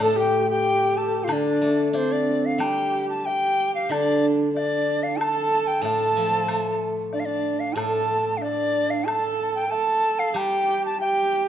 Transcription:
Already playing: guzheng D3
0.00 guzheng A2, horsehead fiddle A4, xiao A4, dizi A5, high woodblock
0.16 horsehead fiddle G4, xiao G4, dizi G5
0.50 xiao G4, horsehead fiddle G4, dizi G5
0.97 xiao A4, dizi A5
1.24 xiao F4, dizi F5
1.28 guzheng D3, xiao D4, horsehead fiddle D4, high woodblock
1.32 dizi D5
1.61 guzheng A3
1.92 guzheng D4, dizi C5 D5, low woodblock
1.96 horsehead fiddle C4
2.12 dizi D5
2.45 dizi F5
2.58 guzheng G3, horsehead fiddle G4, dizi G5, high woodblock
3.09 dizi A5
3.25 horsehead fiddle G4, dizi G5, low woodblock
3.75 dizi F5
3.89 guzheng D3, horsehead fiddle D4, dizi D5, high woodblock
4.55 horsehead fiddle D4, dizi D5, low woodblock
5.03 dizi F5
5.18 horsehead fiddle A4, dizi A5, high woodblock
5.67 dizi G5
5.82 guzheng A2, horsehead fiddle A4, dizi A5, low woodblock
6.17 guzheng F3
6.48 guzheng A3, high woodblock
7.13 horsehead fiddle D4, dizi D5, low woodblock
7.20 dizi F5
7.26 horsehead fiddle D4, dizi D5
7.60 dizi F5
7.75 guzheng A2, horsehead fiddle A4, dizi A5, high woodblock
8.37 dizi F5
8.42 horsehead fiddle D4, dizi D5, low woodblock
8.90 dizi F5
9.06 horsehead fiddle A4, dizi A5, high woodblock
9.55 dizi G5
9.71 horsehead fiddle A4, dizi A5, low woodblock
10.19 dizi F5
10.34 guzheng G3, horsehead fiddle G4, dizi G5, high woodblock
10.86 dizi A5
11.01 horsehead fiddle G4, dizi G5, low woodblock

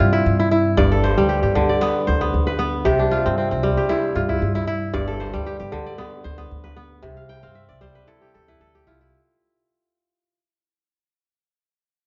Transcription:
Already playing: kora C3 G3 C4 D4 G4
0.00 upright bass G2, kora F4
0.12 kora E4
0.26 upright bass G2
0.39 kora E4
0.51 kora E4
0.77 upright bass G1, kora G2 D5, djembe slap, djembe tone, djembe bass
0.91 kora A4
1.03 kora C5, djembe slap
1.17 upright bass D2, kora G3, djembe slap, djembe tone
1.29 kora G4
1.42 upright bass G1, kora G4
1.55 kora D3, djembe bass
1.69 kora D5, djembe slap, djembe tone
1.81 kora B3, djembe slap
2.07 upright bass D2, kora C5, djembe slap, djembe tone
2.21 kora B3, djembe bass
2.34 upright bass D2
2.47 kora B4, djembe slap, djembe tone
2.59 kora B3
2.85 upright bass C2, kora C3 G4, djembe slap, djembe tone, djembe bass
2.99 kora D4
3.11 kora F4, djembe slap
3.25 upright bass G2, kora C4, djembe slap, djembe tone
3.38 kora C4
3.51 upright bass C2, kora C4, djembe slap
3.63 kora G3, djembe bass
3.77 kora G4, djembe slap, djembe tone
3.89 kora E4, djembe slap
4.16 upright bass G2, kora F4, djembe slap, djembe tone
4.29 kora E4, djembe bass
4.42 upright bass G2
4.55 kora E4, djembe slap, djembe tone
4.67 kora E4
4.93 upright bass G1, kora G2 D5, djembe slap, djembe tone, djembe bass
5.07 kora A4
5.20 kora C5, djembe slap
5.33 upright bass D2, kora G3, djembe slap, djembe tone
5.46 kora G4
5.59 upright bass G1, kora G4
5.72 kora D3, djembe bass
5.86 kora D5, djembe slap, djembe tone
5.98 kora B3, djembe slap
6.24 upright bass D2, kora C5, djembe slap, djembe tone
6.38 kora B3, djembe slap, djembe bass
6.52 upright bass D2
6.64 kora B4, djembe slap, djembe tone
6.77 kora B3
7.03 upright bass C2, kora C3, djembe slap, djembe tone, djembe bass
7.17 kora F5
7.29 kora G5, djembe slap
7.43 upright bass G2, kora C4 F5, djembe slap, djembe tone
7.55 kora E5
7.69 upright bass C2, kora D5
7.81 kora G3 C5, djembe bass
7.95 kora B4, djembe tone
8.08 kora E4 A4, djembe slap
8.22 kora G4
8.35 upright bass E2, kora A4, djembe slap, djembe tone
8.48 kora E4 B4, djembe slap, djembe bass
8.61 upright bass D2, kora A4
8.75 kora G4, djembe slap, djembe tone
8.87 upright bass C2, kora E4 F4
9.01 kora E4

